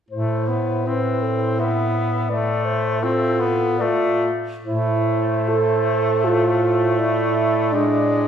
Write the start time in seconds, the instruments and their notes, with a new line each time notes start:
0.09 bass clarinet A2, tenor saxophone A3, alto saxophone E4, clarinet C5
0.48 tenor saxophone B3
0.86 tenor saxophone C4, alto saxophone E4, clarinet B4
1.23 clarinet A4
1.59 tenor saxophone B3, clarinet E5
2.29 tenor saxophone A3, clarinet D5
2.65 clarinet C5
3.01 tenor saxophone C4, alto saxophone F4, clarinet A4
3.40 tenor saxophone B3
3.79 tenor saxophone A3, alto saxophone F4, clarinet D5
4.65 bass clarinet A2, tenor saxophone A3, alto saxophone E4, clarinet C5
5.49 alto saxophone A4
6.25 alto saxophone F4
6.99 alto saxophone E4, clarinet D5
7.73 tenor saxophone G#3, alto saxophone D4